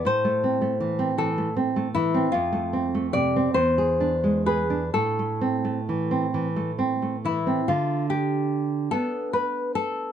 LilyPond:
<<
  \new Staff \with { instrumentName = "Nylon-string guitar" } { \time 6/8 \key a \minor \tempo 4. = 48 c''4. a'8 r8 e'8 | f'4 d''8 c''4 b'8 | a'4. r4 e'8 | f'8 g'4 a'8 b'8 a'8 | }
  \new Staff \with { instrumentName = "Nylon-string guitar" } { \time 6/8 \key a \minor a,16 a16 c'16 a16 e16 c'16 e16 a16 c'16 a16 e16 c'16 | f,16 a16 c'16 a16 c16 c'16 e,16 gis'16 d'16 gis16 gis'16 d'16 | a,16 a16 c'16 a16 e16 c'16 e16 a16 c'16 a16 e16 c'16 | d4. <b d'>4. | }
>>